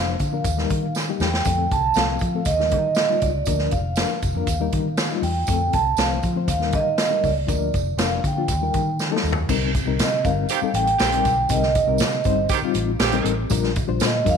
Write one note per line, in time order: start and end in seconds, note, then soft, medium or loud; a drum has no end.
0.00 0.15 F1 medium
0.00 0.15 F3 medium
0.00 0.15 A#3 medium
0.00 0.15 D4 medium
0.00 0.16 C5 medium
0.00 0.94 F5 medium
0.19 0.40 D3 medium
0.19 kick medium
0.19 closed hi-hat medium
0.19 tambourine medium
0.32 0.45 F3 medium
0.32 0.45 A#3 medium
0.32 0.46 D4 medium
0.32 0.46 A#4 medium
0.44 0.65 D#2 medium
0.44 kick medium
0.44 closed hi-hat medium
0.44 tambourine medium
0.57 0.84 G3 medium
0.57 0.84 A#3 medium
0.57 0.85 D#4 medium
0.57 0.85 A#4 medium
0.57 snare soft
0.70 1.11 D#3 loud
0.70 kick medium
0.70 closed hi-hat medium
0.70 tambourine soft
0.95 snare medium
0.95 tambourine medium
1.09 1.28 G3 medium
1.09 1.29 A#3 medium
1.09 1.29 D#4 medium
1.09 1.29 G4 medium
1.20 1.40 E2 medium
1.20 1.68 G5 medium
1.20 snare medium
1.20 tambourine medium
1.34 snare medium
1.45 1.66 F2 medium
1.45 1.72 F3 medium
1.45 1.73 A3 medium
1.45 1.73 C4 medium
1.45 1.73 A4 medium
1.45 kick loud
1.45 closed hi-hat medium
1.45 tambourine medium
1.71 1.91 C2 medium
1.71 1.97 A5 loud
1.71 kick medium
1.71 closed hi-hat medium
1.71 tambourine medium
1.94 2.16 C2 medium
1.94 2.16 F3 medium
1.94 2.16 A3 medium
1.94 2.17 C4 medium
1.94 2.17 A4 medium
1.94 2.48 F5 medium
1.94 snare loud
1.94 closed hi-hat medium
1.94 tambourine medium
2.19 2.47 F3 medium
2.19 kick medium
2.19 closed hi-hat medium
2.19 tambourine medium
2.34 2.46 F3 medium
2.34 2.47 A3 medium
2.34 2.47 C4 medium
2.34 2.47 A4 medium
2.45 2.73 D#2 medium
2.45 2.70 D#5 medium
2.45 kick medium
2.45 closed hi-hat medium
2.45 tambourine medium
2.59 2.86 G3 medium
2.59 2.86 A#3 medium
2.59 2.86 D#4 medium
2.59 2.86 A#4 medium
2.59 snare soft
2.70 3.12 D#3 medium
2.70 3.23 D#5 loud
2.70 kick medium
2.70 closed hi-hat medium
2.70 tambourine soft
2.95 snare loud
2.95 closed hi-hat medium
2.95 tambourine medium
3.09 3.29 G3 medium
3.09 3.30 A#3 medium
3.09 3.30 D#4 medium
3.09 3.30 F4 medium
3.20 3.42 C#2 medium
3.20 3.68 D5 medium
3.20 kick medium
3.20 closed hi-hat medium
3.20 tambourine medium
3.46 3.67 D2 loud
3.46 3.73 F3 medium
3.46 3.74 A#3 medium
3.46 3.74 D4 medium
3.46 3.74 A#4 medium
3.46 kick medium
3.46 closed hi-hat medium
3.46 tambourine loud
3.59 snare soft
3.71 4.02 F1 medium
3.71 3.96 F5 medium
3.71 kick medium
3.71 closed hi-hat medium
3.71 tambourine medium
3.96 4.17 F3 medium
3.96 4.17 A#3 medium
3.96 4.18 D4 medium
3.96 4.18 A#4 medium
3.96 4.94 F5 medium
3.96 snare loud
3.96 closed hi-hat loud
3.96 tambourine medium
4.22 4.32 F1 medium
4.22 kick medium
4.22 closed hi-hat medium
4.22 tambourine medium
4.35 4.45 F2 medium
4.35 4.47 F3 medium
4.35 4.48 A#3 medium
4.35 4.48 D4 medium
4.35 4.49 A#4 medium
4.47 4.67 D#2 medium
4.47 kick medium
4.47 closed hi-hat medium
4.47 tambourine medium
4.60 4.87 G3 medium
4.60 4.87 A#3 medium
4.60 4.87 D#4 medium
4.60 4.88 A#4 medium
4.72 5.13 D#3 loud
4.72 kick medium
4.72 closed hi-hat medium
4.72 tambourine soft
4.97 snare loud
4.97 closed hi-hat medium
4.97 tambourine medium
5.11 5.31 G3 medium
5.11 5.31 A#3 medium
5.11 5.31 D#4 medium
5.11 5.31 F4 medium
5.22 5.43 E2 medium
5.22 5.70 G5 medium
5.22 open hi-hat soft
5.22 tambourine medium
5.47 5.68 F2 medium
5.47 5.75 F3 medium
5.47 5.75 A3 medium
5.47 5.75 C4 medium
5.47 5.75 A4 medium
5.47 kick loud
5.47 closed hi-hat medium
5.47 tambourine medium
5.73 5.93 C2 medium
5.73 5.99 A5 loud
5.73 kick medium
5.73 closed hi-hat medium
5.73 tambourine medium
5.97 6.18 C2 medium
5.97 6.18 F3 medium
5.97 6.18 A3 medium
5.97 6.18 C4 medium
5.97 6.19 C5 medium
5.97 6.48 F5 medium
5.97 snare loud
5.97 closed hi-hat loud
5.97 tambourine medium
6.23 6.49 F3 medium
6.23 kick medium
6.23 closed hi-hat medium
6.23 tambourine medium
6.35 6.48 F3 medium
6.35 6.48 A3 medium
6.35 6.49 C4 medium
6.35 6.49 C5 medium
6.48 6.75 D#2 medium
6.48 6.75 F5 medium
6.48 kick medium
6.48 closed hi-hat loud
6.48 tambourine medium
6.59 6.86 G3 medium
6.59 6.87 A#3 medium
6.59 6.87 D#4 medium
6.59 6.88 A#4 medium
6.59 snare soft
6.72 7.14 D#3 loud
6.72 7.26 D#5 medium
6.72 kick medium
6.72 closed hi-hat medium
6.72 tambourine soft
6.98 snare loud
6.98 closed hi-hat medium
6.98 tambourine medium
7.10 7.30 G3 medium
7.10 7.31 A#3 medium
7.10 7.31 D#4 medium
7.10 7.31 A#4 medium
7.23 7.44 C#2 medium
7.23 8.02 D5 medium
7.23 kick medium
7.23 open hi-hat soft
7.23 tambourine medium
7.47 7.69 D2 medium
7.47 7.75 F3 medium
7.47 7.75 A#3 medium
7.47 7.75 D4 medium
7.47 7.75 A#4 medium
7.47 kick loud
7.47 closed hi-hat medium
7.47 tambourine medium
7.74 7.94 F1 medium
7.74 kick medium
7.74 closed hi-hat medium
7.74 tambourine medium
7.97 8.18 F1 medium
7.97 8.18 F3 medium
7.97 8.19 A#3 medium
7.97 8.19 D4 medium
7.97 8.19 A#4 medium
7.97 8.25 F5 medium
7.97 snare loud
7.97 closed hi-hat medium
7.97 tambourine medium
8.24 8.50 D3 medium
8.24 8.97 G5 medium
8.24 kick medium
8.24 closed hi-hat medium
8.24 tambourine medium
8.36 8.49 F3 medium
8.36 8.49 A#3 medium
8.36 8.50 D4 medium
8.36 8.50 F4 medium
8.48 8.68 D#2 medium
8.48 kick medium
8.48 closed hi-hat medium
8.48 tambourine medium
8.61 8.88 G3 medium
8.61 8.88 A#3 medium
8.61 8.89 D#4 medium
8.61 8.89 A#4 medium
8.74 9.14 D#3 loud
8.74 kick medium
8.74 closed hi-hat medium
8.74 tambourine soft
8.99 snare medium
8.99 tambourine medium
9.10 9.31 G3 medium
9.10 9.31 A#3 medium
9.10 9.32 D#4 medium
9.10 9.32 A4 medium
9.16 snare medium
9.23 9.44 D#2 medium
9.23 tambourine medium
9.32 floor tom medium
9.49 9.79 C2 medium
9.49 9.69 G3 medium
9.49 9.69 C4 medium
9.49 9.69 D#4 medium
9.49 9.70 A#4 medium
9.49 kick loud
9.49 crash medium
9.49 tambourine loud
9.75 kick medium
9.75 closed hi-hat medium
9.75 tambourine medium
9.85 10.01 C2 medium
9.85 10.06 G3 medium
9.85 10.07 C4 medium
9.85 10.07 D#4 medium
9.85 10.07 A#4 medium
9.99 10.26 C3 loud
9.99 10.12 D#5 medium
9.99 snare loud
9.99 closed hi-hat loud
9.99 tambourine loud
10.24 10.45 G1 medium
10.24 10.45 G3 medium
10.24 10.45 C4 medium
10.24 10.45 D#4 medium
10.24 10.45 A#4 medium
10.24 10.76 F5 medium
10.24 kick medium
10.24 closed hi-hat medium
10.24 tambourine medium
10.49 10.58 D#3 loud
10.49 10.58 C4 loud
10.49 10.58 G4 loud
10.49 closed hi-hat medium
10.49 tambourine loud
10.61 10.88 G3 medium
10.61 10.89 C4 medium
10.61 10.89 D#4 medium
10.61 10.89 A4 medium
10.61 muted fingered electric bass stroke soft
10.74 10.94 A1 medium
10.74 11.52 G5 loud
10.74 closed hi-hat medium
10.74 tambourine soft
10.87 closed hi-hat soft
10.99 11.20 A#1 medium
10.99 11.35 D#3 medium
10.99 11.35 C4 loud
10.99 11.35 G4 loud
10.99 snare loud
10.99 closed hi-hat medium
10.99 tambourine medium
11.12 11.32 G3 medium
11.12 11.32 C4 medium
11.12 11.33 D#4 medium
11.12 11.33 A#4 medium
11.12 closed hi-hat medium
11.25 11.45 B1 medium
11.25 kick medium
11.25 closed hi-hat medium
11.25 tambourine medium
11.49 11.80 C2 medium
11.49 11.69 G3 medium
11.49 11.70 C4 medium
11.49 11.70 D#4 medium
11.49 11.70 A#4 medium
11.49 12.47 D#5 medium
11.49 kick loud
11.49 closed hi-hat medium
11.49 tambourine loud
11.63 snare soft
11.75 kick medium
11.75 closed hi-hat medium
11.75 tambourine medium
11.87 12.01 C2 medium
11.87 12.07 G3 medium
11.87 12.07 C4 medium
11.87 12.08 D#4 medium
11.87 12.08 A#4 medium
11.98 12.20 C3 loud
11.98 snare loud
11.98 closed hi-hat loud
11.98 tambourine loud
12.24 12.45 G1 medium
12.24 12.45 G3 medium
12.24 12.45 C4 medium
12.24 12.45 D#4 medium
12.24 12.46 C5 medium
12.24 kick medium
12.24 closed hi-hat medium
12.24 tambourine medium
12.49 12.58 D#3 loud
12.49 12.58 C4 medium
12.49 12.58 G4 loud
12.49 kick medium
12.49 closed hi-hat medium
12.49 tambourine medium
12.62 12.89 G3 medium
12.62 12.90 C4 medium
12.62 12.90 D#4 medium
12.62 12.90 F4 medium
12.62 muted fingered electric bass stroke soft
12.74 12.95 A1 medium
12.74 closed hi-hat medium
12.74 tambourine soft
13.00 13.20 A#1 medium
13.00 13.36 D#3 medium
13.00 13.36 C4 loud
13.00 13.36 G4 loud
13.00 snare loud
13.00 closed hi-hat medium
13.00 tambourine medium
13.12 13.33 G3 medium
13.12 13.33 C4 medium
13.12 13.33 D#4 medium
13.12 13.34 A#4 medium
13.12 closed hi-hat medium
13.25 13.45 A1 medium
13.25 closed hi-hat medium
13.25 tambourine medium
13.50 13.80 A#1 loud
13.50 13.70 G3 medium
13.50 13.70 D4 medium
13.50 13.71 F4 medium
13.50 13.71 A#4 medium
13.50 kick loud
13.50 closed hi-hat medium
13.50 tambourine loud
13.63 snare soft
13.76 kick loud
13.76 closed hi-hat medium
13.76 tambourine medium
13.87 13.98 A#1 medium
13.87 14.08 G3 medium
13.87 14.08 D4 medium
13.87 14.08 F4 medium
13.87 14.08 C5 medium
14.00 14.21 A#2 medium
14.00 snare loud
14.00 closed hi-hat loud
14.00 tambourine loud
14.06 14.29 D#5 medium
14.25 14.37 F2 medium
14.25 14.37 G3 medium
14.25 14.37 D4 medium
14.25 14.37 F4 medium
14.25 14.37 A#4 medium
14.25 kick medium
14.25 closed hi-hat medium
14.25 tambourine medium
14.30 14.37 F5 medium